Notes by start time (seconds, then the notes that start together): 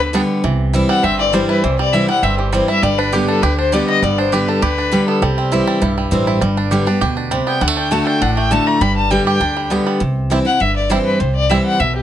Already playing: D2 D3
0.00 D3
0.13 D3 G3 B3 D4 G4
0.44 C2 C3 E3
0.73 E3 G3 C4 E4
0.89 G3 F#5
1.03 G1 G2 C4 E5
1.19 E3 D5
1.33 E3 G3 C4 E4 C5
1.49 E4 B4
1.63 C2 C3 E3 C5
1.79 G3 D5
1.93 E3 G3 C4 E4 E5
2.08 G3 C4 E4 F#5
2.22 G1 G2 C4 E5
2.38 E3 G4
2.52 E3 G3 C4 E4 C5
2.68 C4 E4 E5
2.82 G1 G2 G3 D5
2.98 D4 B4
3.12 D3 G3 B3 G4
3.28 D4 A4
3.42 D2 D3 G4 B4
3.58 D4 C5
3.72 D3 G3 B3 G4 D5
3.88 B3 D#5
4.02 G1 G2 G3 D5
4.18 D4 C5
4.32 D3 G3 B3 G4 B4
4.49 D4 A4
4.62 D2 D3 G4 B4
4.78 D4
4.92 D3 G3 B3 G4
5.08 B3 A4
5.22 C2 C3 G3 G4
5.38 C4
5.52 E3 G3 C4 E4
5.67 G3
5.82 B1 G2 E4
5.98 G3
6.11 A1 E3 G3 C4 E4
6.27 E4
6.41 G1 G2 G3
6.57 D4
6.71 D3 G3 B3 G4
6.87 B3 D4 G4
7.01 D2 B2 G4
7.17 D4
7.31 C3 G3
7.47 B3 G5
7.61 D2 D3 G3 F#5
7.68 A3
7.77 D4 G5
7.91 D3 A3 D4 F#4 A5
8.07 D4 G5
8.21 A1 A2 D4 F#5
8.37 A3 G5
8.51 D3 A3 D4 F#4 A5
8.67 A3 A#5
8.81 G1 G2 G3 B5
8.97 A5
9.10 D3 G3 B3 G4 G5
9.26 G4 G5
9.40 D2 D3 D4
9.57 G3
9.70 D3 G3 B3 G4
9.87 G3
10.00 C2 C3
10.30 E3 G3 C4 E4
10.45 C4 E4 F#5
10.60 G1 G2 E5
10.76 D5
10.90 E3 G3 C4 E4 C5
11.06 B4
11.20 C2 C3 C5
11.35 D5
11.49 E3 G3 C4 E4 E5
11.65 F#5
11.80 B1 B2 E5
11.96 G4